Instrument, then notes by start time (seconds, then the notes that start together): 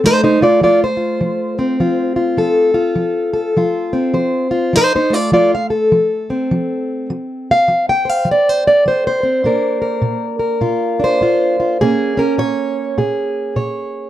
steel-string acoustic guitar
0.04 F3 A3 D#4 C5
0.24 D#4 C5
0.41 A3 F4 D5
0.61 F3 F4 D5
0.84 C5
0.97 F4
1.21 F3
1.59 C4
1.80 F3 F4
2.16 F4
2.37 F3 A4
2.74 F4
2.95 F3
3.33 A4
3.57 F3 F4
3.93 C4
4.14 F3 C5
4.51 F4
4.73 F3 D#4 C5
4.95 D#4 C5
5.10 A3 F4 D5
5.32 F3 F4 D5
5.55 F5
5.70 A4
5.92 F3
6.30 C4
6.51 F3
7.10 F3
7.51 F5
7.68 F3
7.89 G5
8.05 C5
8.10 F5
8.25 F3
8.31 D5
8.49 C5
8.67 D5
8.86 F3 C5
9.07 C5
9.23 C4
9.44 A#2 A#3 D4 A#4
9.82 A#4
10.02 A#2
10.39 A#4
10.61 A#2 F4
11.00 D4
11.04 C5
11.21 A#2 F4
11.60 F4
11.81 A#2 A#3 C#4 G#4
12.17 C#4 A#4
12.38 A#2 C#5
12.98 A#2 G#4
13.56 A#2 C#5